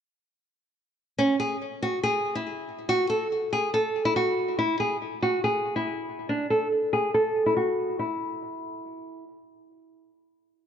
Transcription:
1.18 1.35 C#4 medium
1.40 1.56 G#4 medium
1.82 1.99 F#4 medium
2.03 2.33 G#4 medium
2.35 2.85 E4 medium
2.89 3.05 F#4 medium
3.10 3.26 A4 medium
3.53 3.69 G#4 medium
3.74 4.04 A4 medium
4.05 4.14 E4 medium
4.16 4.56 F#4 medium
4.59 4.75 E4 medium
4.80 4.96 G#4 medium
5.22 5.39 F#4 medium
5.44 5.74 G#4 medium
5.76 6.26 E4 medium
6.29 6.46 D4 medium
6.50 6.67 A4 medium
6.93 7.09 G#4 medium
7.14 7.44 A4 medium
7.46 7.54 E4 medium
7.57 7.97 F#4 medium
7.99 9.23 E4 medium

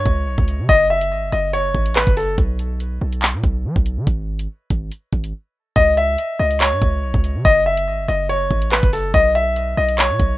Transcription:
0.00 0.65 C#5 medium
0.06 0.28 C#2 loud
0.06 kick medium
0.06 closed hi-hat medium
0.27 0.37 B1 loud
0.38 0.61 C#2 loud
0.38 kick loud
0.48 closed hi-hat medium
0.59 0.69 C#3 loud
0.69 1.13 F#1 loud
0.69 0.86 D#5 loud
0.69 kick loud
0.69 closed hi-hat medium
0.90 1.30 E5 medium
1.01 closed hi-hat medium
1.11 1.24 G#1 loud
1.23 1.32 F#1 loud
1.32 1.73 F#1 loud
1.32 1.50 D#5 medium
1.32 closed hi-hat medium
1.53 1.93 C#5 medium
1.53 closed hi-hat medium
1.75 2.06 A1 loud
1.75 kick medium
1.86 closed hi-hat medium
1.96 2.13 B4 medium
1.96 clap loud
2.07 2.37 F#1 loud
2.07 kick loud
2.07 closed hi-hat medium
2.17 2.34 A4 medium
2.17 open hi-hat medium
2.38 2.99 B1 loud
2.38 kick loud
2.38 closed hi-hat medium
2.59 closed hi-hat medium
2.80 closed hi-hat medium
3.01 3.35 B1 loud
3.13 closed hi-hat medium
3.22 clap loud
3.34 3.43 B2 loud
3.44 3.66 B1 loud
3.44 kick medium
3.44 closed hi-hat medium
3.65 3.75 F#3 loud
3.76 3.99 B1 loud
3.76 kick loud
3.86 closed hi-hat medium
3.97 4.07 D#3 loud
4.07 4.48 G#1 loud
4.07 kick loud
4.07 closed hi-hat medium
4.39 closed hi-hat medium
4.70 4.91 G#1 loud
4.70 kick loud
4.70 closed hi-hat medium
4.92 closed hi-hat medium
5.13 5.33 G#1 loud
5.13 kick medium
5.24 closed hi-hat medium
5.76 6.17 C#2 loud
5.76 5.93 D#5 loud
5.76 kick loud
5.76 closed hi-hat medium
5.97 6.37 E5 medium
5.97 closed hi-hat medium
6.18 closed hi-hat medium
6.39 6.73 C#2 loud
6.39 6.57 D#5 medium
6.51 closed hi-hat medium
6.61 7.41 C#5 medium
6.61 clap loud
6.72 6.81 G#2 loud
6.82 7.04 C#2 loud
6.82 kick medium
6.82 closed hi-hat medium
7.03 7.13 B1 loud
7.14 7.37 C#2 loud
7.14 kick loud
7.24 closed hi-hat medium
7.35 7.45 C#3 loud
7.45 7.89 F#1 loud
7.45 7.62 D#5 loud
7.45 kick loud
7.45 closed hi-hat medium
7.66 8.06 E5 medium
7.77 closed hi-hat medium
7.87 8.00 G#1 loud
7.99 8.08 F#1 loud
8.08 8.49 F#1 loud
8.08 8.26 D#5 medium
8.08 closed hi-hat medium
8.29 8.69 C#5 medium
8.29 closed hi-hat medium
8.51 8.82 A1 loud
8.51 kick medium
8.62 closed hi-hat medium
8.72 8.89 B4 medium
8.72 clap loud
8.83 9.13 F#1 loud
8.83 kick loud
8.83 closed hi-hat medium
8.93 9.10 A4 medium
8.93 open hi-hat medium
9.14 9.75 B1 loud
9.14 9.31 D#5 medium
9.14 kick loud
9.14 closed hi-hat medium
9.35 9.75 E5 medium
9.35 closed hi-hat medium
9.56 closed hi-hat medium
9.77 10.11 B1 loud
9.77 9.95 D#5 medium
9.89 closed hi-hat medium
9.98 10.38 C#5 medium
9.98 clap loud
10.10 10.19 B2 loud
10.20 10.38 B1 loud
10.20 kick medium
10.20 closed hi-hat medium

